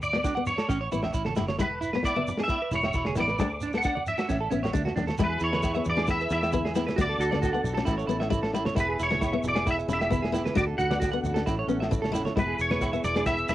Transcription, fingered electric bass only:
Already playing: D2
0.69 A1
0.92 A1
1.14 A1
1.37 F#1
1.59 E1
2.71 E1
2.95 E1
3.16 A1
3.39 D2
4.30 A1
4.51 A1
4.75 D2
4.96 D#2
5.19 E2
5.41 E2
5.86 E2
6.31 E2
6.98 D2
7.18 D2
7.64 B1
7.87 A1
8.08 A1
8.77 E1
9.00 E1
9.44 E1
9.88 E1
10.56 D2
10.78 D2
11.23 D2
11.47 A1
11.67 A1
12.37 E1
12.59 E1
13.04 E1
13.49 E1

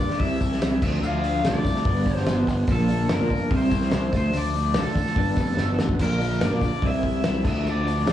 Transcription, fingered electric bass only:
0.19 C2
0.62 C2
0.82 D2
1.02 D2
1.45 C2
1.55 D3
1.65 C2
1.85 G1
2.28 G1
2.48 G1
2.67 A#1
3.10 G1
3.21 A#2
3.30 G1
3.51 C2
3.92 C2
4.12 D2
4.34 D2
4.75 C2
4.83 D3
4.95 A1
5.16 G1
5.37 F1
5.58 G1
5.79 A1
5.99 A#1
6.42 G1
6.51 A#2
6.61 A#1
6.82 C2
7.25 C2
7.45 D2
7.66 D2
8.06 C2

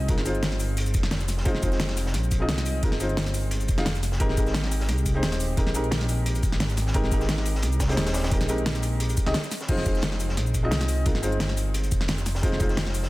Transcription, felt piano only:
0.08 G#3 C4 D#4 F4 A#4
0.25 G#3 C4 D#4 F4 C5
1.45 G#3 C4 D#4 F4 C5
1.62 G#3 C4 D#4 F4 C5
2.39 G#3 C4 D#4 F4 D#5
2.83 G#3 C4 D#4 F4 A#4
2.99 G#3 C4 D#4 F4 C5
3.78 G#3 C4 D#4 F4 F5
4.20 G#3 C4 D#4 G4 A#4
4.36 G#3 C4 D#4 G4 A#4
5.14 G#3 C4 D#4 G4 C5
5.57 G#3 C4 D#4 G4 A#4
5.74 G#3 C4 D#4 G4 A#4
6.94 G#3 C4 D#4 G4 A#4
7.11 G#3 C4 D#4 G4 A#4
7.88 G#3 C4 D#4 G4 C5
8.31 G#3 C4 D#4 G4 A#4
8.48 G#3 C4 D#4 G4 A#4
9.26 G#3 C4 D#4 G4 D#5
9.68 G#3 C4 D#4 F4 C5
9.85 G#3 C4 D#4 F4 C5
10.62 G#3 C4 D#4 F4 D#5
11.05 G#3 C4 D#4 F4 A#4
11.22 G#3 C4 D#4 F4 C5
12.42 G#3 C4 D#4 F4 C5
12.59 G#3 C4 D#4 F4 C5

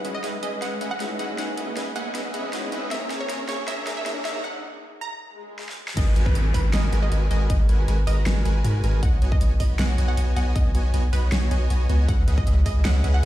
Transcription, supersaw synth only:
0.05 C#4 G#4 B4 D#5 E5 F#5
0.24 C#4 G#4 B4 D#5 E5 F#5
0.43 C#4 G#4 B4 D#5 E5 G#5
0.62 C#4 G#4 B4 D#5 E5 F#5
0.81 C#4 G#4 B4 D#5 E5 F#5
1.00 C#4 G#4 B4 D#5 E5 F#5
1.19 C#4 G#4 B4 D#5 E5 F#5
1.38 C#4 G#4 B4 D#5 E5 F#5
1.58 C#4 G#4 B4 D#5 E5 F#5
1.77 C#4 G#4 B4 D#5 E5 F#5
1.96 C#4 G#4 B4 D#5 E5 G#5
2.15 C#4 G#4 B4 D#5 E5 F#5
2.34 C#4 G#4 B4 D#5 E5 F#5
2.53 C#4 G#4 B4 D#5 E5 F#5
2.72 C#4 G#4 B4 D#5 E5 F#5
2.91 A#3 G#4 C#5 E5 A#5
3.10 A#3 G#4 C#5 E5 A#5
3.29 A#3 G#4 C#5 E5 A#5
3.49 A#3 G#4 C#5 E5 C#6
3.68 A#3 G#4 C#5 E5 A#5
3.87 A#3 G#4 C#5 E5 A#5
4.06 A#3 G#4 C#5 E5 A#5
4.25 A#3 G#4 C#5 E5 A#5
5.97 G#3 F#4 A#4 B4 G#5
6.16 G#3 F#4 A#4 B4 G#5
6.35 G#3 F#4 A#4 B4 G#5
6.54 G#3 F#4 A#4 B4 A#5
6.73 G#3 F#4 A#4 B4 G#5
6.93 G#3 F#4 A#4 B4 G#5
7.12 G#3 F#4 A#4 B4 G#5
7.31 G#3 F#4 A#4 B4 G#5
7.69 G#3 F#4 A#4 B4 G#5
7.88 G#3 F#4 A#4 B4 G#5
8.07 G#3 F#4 A#4 B4 A#5
8.26 G#3 F#4 A#4 B4 G#5
8.45 G#3 F#4 A#4 B4 G#5
8.64 G#3 F#4 A#4 B4 G#5
8.84 G#3 F#4 A#4 B4 G#5
9.03 B3 F#4 C#5 D#5 G#5
9.22 B3 F#4 C#5 D#5 G#5
9.41 B3 F#4 C#5 D#5 G#5
9.60 B3 F#4 C#5 D#5 B5
9.79 B3 F#4 C#5 D#5 G#5
9.98 B3 F#4 C#5 D#5 G#5
10.17 B3 F#4 C#5 D#5 G#5
10.36 B3 F#4 C#5 D#5 G#5
10.56 B3 F#4 C#5 D#5 G#5
10.75 B3 F#4 C#5 D#5 G#5
10.94 B3 F#4 C#5 D#5 G#5
11.13 B3 F#4 C#5 D#5 B5
11.32 B3 F#4 C#5 D#5 G#5
11.51 B3 F#4 C#5 D#5 G#5
11.70 B3 F#4 C#5 D#5 G#5
11.89 B3 F#4 C#5 D#5 G#5
12.08 C#4 G#4 B4 D#5 E5 F#5
12.28 C#4 G#4 B4 D#5 E5 F#5
12.47 C#4 G#4 B4 D#5 E5 F#5
12.66 C#4 G#4 B4 D#5 E5 G#5
12.85 C#4 G#4 B4 D#5 E5 F#5
13.04 C#4 G#4 B4 D#5 E5 F#5

